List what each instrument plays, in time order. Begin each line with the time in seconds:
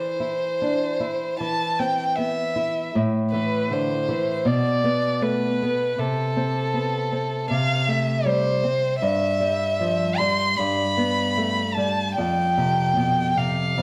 Already playing: nylon-string guitar E3, violin C5
0.20 nylon-string guitar E4
0.62 nylon-string guitar D4
1.00 nylon-string guitar E4
1.40 nylon-string guitar E3, violin A5
1.79 nylon-string guitar C4, violin G5
2.16 nylon-string guitar B3, violin E5
2.56 nylon-string guitar E4
2.95 nylon-string guitar A2
3.32 nylon-string guitar E3, violin B4
3.71 nylon-string guitar D3, violin C5
4.08 nylon-string guitar E3
4.45 nylon-string guitar B2, violin D5
4.84 nylon-string guitar B3
5.22 nylon-string guitar A3, violin B4
5.62 nylon-string guitar B3
5.98 nylon-string guitar C3, violin A4
6.37 nylon-string guitar C4
6.74 nylon-string guitar B3
7.12 nylon-string guitar C4
7.50 nylon-string guitar C3, violin F5
7.88 nylon-string guitar A3, violin E5
8.26 nylon-string guitar G3, violin C5
8.63 nylon-string guitar C4
9.01 nylon-string guitar G2, violin E5
9.40 nylon-string guitar G3
9.80 nylon-string guitar F3
10.17 nylon-string guitar G3, violin C6
10.57 nylon-string guitar G2, violin B5
10.97 nylon-string guitar B3
11.37 nylon-string guitar A3
11.74 nylon-string guitar G3, violin A5
12.17 nylon-string guitar F2, violin G5
12.58 nylon-string guitar C3
12.96 nylon-string guitar B2
13.37 nylon-string guitar C3, violin F5
13.78 nylon-string guitar F2